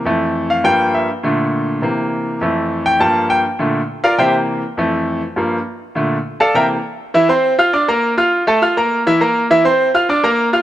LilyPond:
<<
  \new Staff \with { instrumentName = "Grand piano" } { \time 4/4 \key f \major \tempo 4 = 203 r4. f''8 g''4 e''8 r8 | r1 | r4. g''8 a''4 g''8 r8 | r4. <f' bes' d'' f''>8 <g' c'' e'' g''>8 r4. |
r1 | r4. <a' d'' f'' a''>8 <bes' e'' g'' bes''>8 r4. | <e e' e''>8 <c' c'' c'''>4 <f' f'' f'''>8 <d' d'' d'''>8 <bes bes' bes''>4 <f' f'' f'''>8~ | <f' f'' f'''>8 <a a' a''>8 <f' f'' f'''>8 <bes bes' bes''>4 <e e' e''>8 <bes bes' bes''>4 |
<e e' e''>8 <c' c'' c'''>4 <f' f'' f'''>8 <d' d'' d'''>8 <bes bes' bes''>4 <f' f'' f'''>8 | }
  \new Staff \with { instrumentName = "Grand piano" } { \clef bass \time 4/4 \key f \major <f, e a>2 <g, f bes>4. r8 | <bes, d a>2 <c e bes>2 | <f, e a>2 <g, f bes>4. r8 | <bes, d a>8 r4. <c e bes>4. r8 |
<f, e a>4. r8 <g, f bes>8 r4. | <bes, d a>8 r4. <c e bes>8 r4. | r1 | r1 |
r1 | }
>>